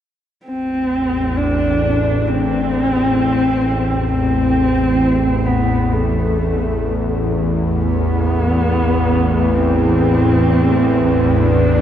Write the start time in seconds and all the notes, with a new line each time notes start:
0.45 A1 E2 A3 C4
1.37 D4 E4
2.28 C4
4.11 C4
4.24 B4
5.46 B3
5.92 A3
7.72 B3
9.54 C4
11.36 D4